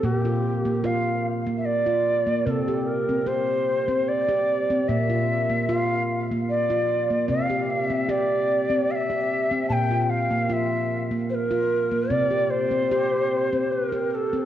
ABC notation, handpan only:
X:1
M:3/4
L:1/16
Q:"Swing 16ths" 1/4=75
K:Bblyd
V:1 name="Handpan"
B, F2 B, F2 z B,2 F2 B, | C G2 C G2 z C2 G2 C | B, F2 B, F2 z B,2 F2 B, | C G2 C G2 z C2 G2 C |
B, F2 B, F2 z B,2 F2 B, | C G2 C G2 z C2 G2 C |]
V:2 name="Handpan" clef=bass
B,,12 | C,12 | B,,12 | C,12 |
B,,12 | C,12 |]